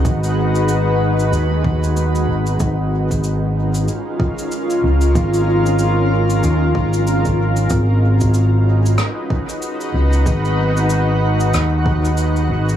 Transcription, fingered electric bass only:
X:1
M:4/4
L:1/8
Q:"Swing 16ths" 1/4=94
K:G#dor
V:1 name="Fingered electric bass" clef=bass
G,,,4 D,,3 G,,, | G,,,4 z3 C,, | G,,,4 D,, G,,,3 | G,,,4 z3 C,, |
G,,,4 D,,3 G,,, |]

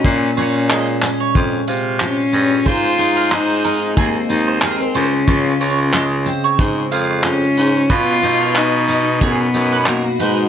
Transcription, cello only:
X:1
M:4/4
L:1/8
Q:"Swing 16ths" 1/4=92
K:Dblyd
V:1 name="Cello"
D2 z4 D2 | F2 E2 B,2 C D- | D2 z4 D2 | F2 ^D2 =B,2 ^A, _A, |]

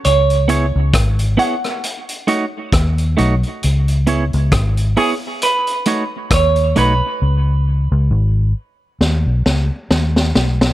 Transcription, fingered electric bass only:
X:1
M:4/4
L:1/16
Q:"Swing 16ths" 1/4=67
K:C#m
V:1 name="Fingered electric bass" clef=bass
C,,3 C,, G,,,2 z6 D,,2 B,,, z | C,,3 C,, G,,,2 z6 D,,2 B,,, z | C,,3 C,, G,,,2 z2 D,, B,,, C,, z D,,2 B,,,2 |]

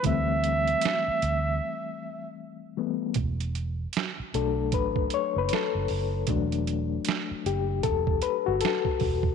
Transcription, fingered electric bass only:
X:1
M:4/4
L:1/16
Q:"Swing 16ths" 1/4=77
K:Em
V:1 name="Fingered electric bass" clef=bass
D,,4 z2 D,,2 z8 | E,,,4 z2 B,,,2 A,,,2 z F,,, z F,,, F,,,2 | E,,,4 z2 F,,,2 E,,,2 z G,,, z2 E,,,2 |]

